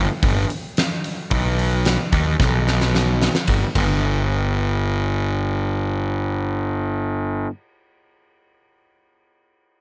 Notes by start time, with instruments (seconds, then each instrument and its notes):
0.23 picked electric bass G1, kick, open hi-hat
0.50 open hi-hat
0.77 snare, open hi-hat
1.04 open hi-hat
1.31 picked electric bass B1, kick, open hi-hat
1.59 open hi-hat
1.85 snare, open hi-hat
2.12 picked electric bass D#2, kick, open hi-hat
2.40 picked electric bass B1, kick, snare
2.68 snare
2.81 snare
2.95 snare
3.22 snare
3.35 snare
3.47 picked electric bass G1, kick, ride
3.75 picked electric bass G1, kick, ride